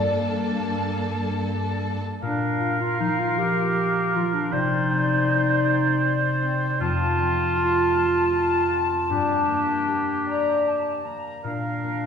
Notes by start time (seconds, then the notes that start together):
Already playing: G2 A#3 D4 A4 D5 A5
2.21 A#2 D4 A#4 F5
2.61 F4
2.81 F4
3.00 F3 D#4
3.20 F4
3.38 G4 A#4
4.15 F3 F4
4.34 D4
4.52 C3 D#4 C5 D5
4.91 C4
5.28 D#4
5.66 G4
6.42 C4
6.80 F2 F4 A5
7.18 C4
7.56 F4
7.94 A3
8.32 F4
8.71 C4
9.10 G2 D4 G4
9.49 A#3
9.88 G4
10.26 D5 A#5
10.66 A5
11.05 A#3 A#5
11.44 A#2 D4 A#4 F5
11.84 A#3